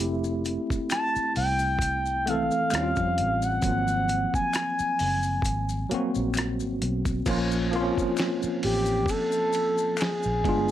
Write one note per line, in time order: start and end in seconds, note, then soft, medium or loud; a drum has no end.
0.00 0.57 F1 medium
0.00 1.19 A3 medium
0.00 1.20 C4 medium
0.00 1.20 E4 medium
0.00 1.24 G4 loud
0.00 closed hi-hat medium
0.24 maracas soft
0.45 closed hi-hat medium
0.45 maracas soft
0.70 kick medium
0.70 maracas soft
0.90 1.33 A5 loud
0.90 finger snap medium
0.90 cross-stick loud
0.90 closed hi-hat medium
0.90 maracas medium
1.16 muted fingered electric bass stroke soft
1.16 maracas soft
1.36 2.48 C2 medium
1.36 2.29 G5 loud
1.36 open hi-hat soft
1.36 maracas soft
1.59 maracas soft
1.79 kick medium
1.79 closed hi-hat medium
1.79 maracas medium
2.06 maracas soft
2.26 2.73 E3 medium
2.26 2.72 A3 medium
2.26 2.72 C4 medium
2.26 3.45 F5 loud
2.26 closed hi-hat medium
2.30 2.74 A4 medium
2.51 maracas soft
2.70 2.95 D#2 medium
2.70 3.54 G3 medium
2.70 3.55 C4 medium
2.70 3.56 C#4 medium
2.70 finger snap medium
2.70 closed hi-hat medium
2.70 maracas medium
2.75 2.81 E4 medium
2.75 cross-stick loud
2.83 3.60 F4 medium
2.96 3.20 F2 medium
2.96 kick medium
2.96 maracas soft
3.18 3.58 A1 medium
3.18 closed hi-hat medium
3.42 4.34 F#5 loud
3.42 maracas soft
3.62 4.25 G#1 loud
3.62 5.28 F#3 medium
3.62 5.29 A#3 medium
3.62 5.30 C4 medium
3.62 kick loud
3.62 closed hi-hat medium
3.62 maracas medium
3.67 5.30 F3 medium
3.88 maracas soft
4.08 closed hi-hat medium
4.08 maracas soft
4.34 6.12 G#5 loud
4.34 kick medium
4.34 maracas soft
4.53 finger snap medium
4.53 cross-stick loud
4.53 closed hi-hat medium
4.53 maracas medium
4.79 muted fingered electric bass stroke soft
4.79 maracas soft
4.99 5.40 F#1 medium
4.99 open hi-hat soft
4.99 maracas soft
5.23 maracas soft
5.42 5.84 G#1 medium
5.42 kick medium
5.42 closed hi-hat medium
5.42 maracas medium
5.69 maracas soft
5.90 7.14 F#3 medium
5.90 7.15 A#3 medium
5.90 7.15 C4 medium
5.90 muted fingered electric bass stroke soft
5.90 closed hi-hat medium
5.94 7.16 F#4 loud
6.15 6.62 A#1 medium
6.15 maracas soft
6.34 finger snap medium
6.34 closed hi-hat medium
6.34 maracas medium
6.38 cross-stick loud
6.60 6.79 G#1 medium
6.60 maracas medium
6.82 7.22 B1 medium
6.82 closed hi-hat medium
7.05 kick medium
7.05 maracas soft
7.26 7.89 A#1 loud
7.26 7.67 F3 medium
7.26 7.68 A#3 medium
7.26 7.69 C#4 medium
7.26 kick loud
7.26 crash medium
7.26 ride medium
7.26 maracas medium
7.30 7.70 F4 medium
7.51 maracas medium
7.71 9.37 F3 medium
7.71 9.38 A#3 medium
7.71 7.80 C4 medium
7.71 ride soft
7.76 9.39 F4 loud
7.81 9.42 C#4 medium
7.98 kick medium
7.98 maracas soft
8.17 finger snap medium
8.17 snare loud
8.17 ride medium
8.17 maracas medium
8.43 muted fingered electric bass stroke soft
8.43 maracas medium
8.63 9.04 A1 medium
8.63 9.11 G4 medium
8.63 open hi-hat medium
8.63 ride medium
8.86 maracas soft
9.06 10.01 A4 loud
9.06 kick medium
9.06 ride medium
9.06 maracas medium
9.32 maracas soft
9.53 ride soft
9.53 maracas soft
9.78 maracas soft
9.97 10.71 G#4 loud
9.97 finger snap medium
9.97 ride medium
9.97 maracas medium
10.02 snare loud
10.23 10.45 A#1 medium
10.23 maracas soft
10.44 10.71 G1 medium
10.44 10.71 G#3 medium
10.44 10.71 B3 medium
10.44 10.71 D4 medium
10.44 kick loud
10.44 ride medium
10.49 10.71 F4 loud